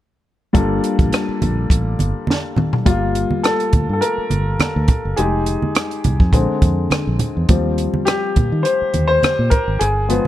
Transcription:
0.53 0.79 G1 medium
0.53 2.81 G3 medium
0.53 2.82 A#3 soft
0.53 2.82 D4 medium
0.53 2.82 F4 medium
0.53 2.82 A4 medium
0.53 kick medium
0.53 closed hi-hat medium
0.84 closed hi-hat medium
0.99 1.10 A1 medium
0.99 kick medium
0.99 closed hi-hat soft
0.99 high conga medium
1.13 cross-stick loud
1.13 closed hi-hat medium
1.13 muted conga soft
1.29 muted fingered electric bass stroke soft
1.42 1.66 A#1 medium
1.42 closed hi-hat medium
1.42 muted conga soft
1.42 high conga medium
1.42 low conga medium
1.70 1.94 A1 medium
1.70 kick medium
1.70 closed hi-hat medium
1.70 muted conga soft
1.99 2.12 G1 medium
1.99 closed hi-hat medium
1.99 muted conga soft
1.99 high conga medium
2.27 snare soft
2.27 muted conga soft
2.27 high conga medium
2.56 mid tom medium
2.56 muted conga soft
2.56 low conga medium
2.73 floor tom medium
2.85 3.24 G1 medium
2.85 5.13 G3 soft
2.85 5.13 A#3 soft
2.85 5.14 F4 medium
2.85 kick medium
2.85 closed hi-hat medium
2.85 muted conga soft
3.15 closed hi-hat medium
3.15 muted conga soft
3.31 muted fingered electric bass stroke soft
3.31 high conga medium
3.43 3.92 A4 medium
3.43 cross-stick loud
3.43 closed hi-hat medium
3.60 closed hi-hat soft
3.73 3.86 D2 medium
3.73 kick medium
3.73 closed hi-hat medium
3.73 high conga medium
3.73 low conga medium
3.89 4.00 G2 medium
3.89 4.01 A4 medium
4.01 5.21 A#4 medium
4.01 closed hi-hat medium
4.18 muted fingered electric bass stroke soft
4.30 4.55 G1 medium
4.30 closed hi-hat medium
4.30 high conga medium
4.59 muted fingered electric bass stroke soft
4.59 cross-stick medium
4.59 closed hi-hat medium
4.59 high conga medium
4.76 4.87 D2 medium
4.88 kick medium
4.88 closed hi-hat medium
4.88 low conga medium
5.05 5.16 F#1 medium
5.16 5.55 F1 medium
5.16 6.29 G#3 soft
5.16 6.30 D#4 soft
5.16 6.29 G4 soft
5.16 5.71 G#4 medium
5.16 closed hi-hat medium
5.46 closed hi-hat medium
5.46 muted conga soft
5.62 muted fingered electric bass stroke soft
5.62 high conga medium
5.75 cross-stick loud
5.75 closed hi-hat medium
5.75 muted conga soft
5.91 closed hi-hat soft
6.04 6.18 C2 medium
6.04 closed hi-hat medium
6.04 high conga medium
6.04 low conga medium
6.20 6.31 F2 medium
6.20 kick medium
6.33 6.46 A#1 medium
6.33 7.45 D3 soft
6.33 7.45 G#3 soft
6.33 7.46 C4 soft
6.33 kick medium
6.33 closed hi-hat medium
6.49 muted fingered electric bass stroke soft
6.62 6.86 F2 medium
6.62 kick medium
6.62 closed hi-hat medium
6.62 muted conga soft
6.62 high conga medium
6.90 muted fingered electric bass stroke soft
6.90 cross-stick medium
6.90 closed hi-hat medium
6.90 high conga medium
7.07 7.18 A#1 medium
7.19 closed hi-hat medium
7.19 muted conga soft
7.19 low conga medium
7.37 7.47 E2 medium
7.49 7.87 D#2 medium
7.49 8.32 F3 soft
7.49 8.32 G3 soft
7.49 8.33 C4 soft
7.49 kick medium
7.49 closed hi-hat medium
7.49 muted conga soft
7.78 closed hi-hat medium
7.94 muted fingered electric bass stroke soft
7.94 high conga medium
8.05 8.66 G4 medium
8.05 cross-stick loud
8.05 closed hi-hat medium
8.05 muted conga soft
8.36 8.50 A#2 medium
8.36 kick medium
8.36 closed hi-hat medium
8.36 muted conga soft
8.36 high conga medium
8.36 low conga medium
8.52 8.63 D#3 medium
8.63 9.05 C5 medium
8.63 closed hi-hat medium
8.82 muted fingered electric bass stroke soft
8.94 9.18 D#2 medium
8.94 closed hi-hat medium
8.94 high conga medium
9.07 9.52 C5 loud
9.23 muted fingered electric bass stroke soft
9.23 cross-stick medium
9.23 closed hi-hat medium
9.23 high conga medium
9.39 9.50 A#2 medium
9.50 9.81 A#4 medium
9.50 kick medium
9.50 closed hi-hat medium
9.50 muted conga soft
9.50 low conga medium
9.68 9.79 G#1 medium
9.79 10.18 G1 medium
9.79 10.27 G#4 medium
9.79 closed hi-hat medium
10.08 10.27 F3 soft
10.08 10.27 G#3 soft
10.08 10.27 B3 medium
10.08 closed hi-hat medium
10.08 muted conga soft

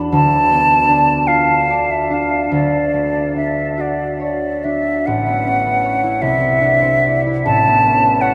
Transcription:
0.00 0.14 E2 medium
0.00 0.49 B3 soft
0.00 0.88 D4 soft
0.00 0.15 F#4 soft
0.00 0.15 C#5 soft
0.12 2.50 D2 medium
0.12 1.29 A5 medium
0.51 2.56 B3 soft
0.89 2.09 D4 soft
1.27 2.56 F4 soft
1.27 1.92 F5 medium
1.70 5.09 D5 soft
1.91 2.15 E5 medium
2.10 3.35 D4 soft
2.10 2.54 F5 medium
2.52 5.08 D2 soft
2.52 3.36 D5 medium
2.94 6.84 A3 soft
3.36 4.63 D4 soft
3.36 3.82 E5 soft
3.78 5.08 F#4 soft
3.78 4.21 D5 soft
4.20 5.83 C#5 soft
4.20 4.66 D5 soft
4.64 5.09 D4 soft
4.64 5.08 E5 medium
5.06 6.25 A1 soft
5.06 6.23 F#5 medium
5.26 5.65 B3 soft
5.46 5.78 C#4 soft
5.66 6.25 B3 soft
5.84 6.25 C#5 soft
6.03 7.25 E4 soft
6.22 7.50 C2 soft
6.22 7.21 E5 medium
6.40 6.81 C4 soft
6.61 6.97 D4 soft
6.82 7.49 C4 soft
7.05 7.50 D5 soft
7.26 8.34 E4 soft
7.46 8.34 A1 medium
7.46 8.23 A5 medium
7.67 8.03 B3 soft
7.86 8.17 C#4 soft
8.04 8.34 B3 soft
8.21 8.34 C#5 soft
8.21 8.34 F#5 medium

